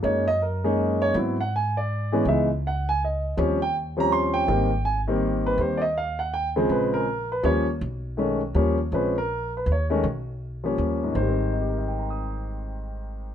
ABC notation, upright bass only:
X:1
M:3/4
L:1/8
Q:"Swing" 1/4=162
K:Ab
V:1 name="Upright bass" clef=bass
_G,,6 | A,,6 | D,,6 | E,,6 |
A,,,6 | E,,6 | B,,,4 E,,2 | =B,,,4 E,,2 |
B,,,4 ^D,,2 | =B,,,4 E,,2 | A,,,6- | A,,,6 |]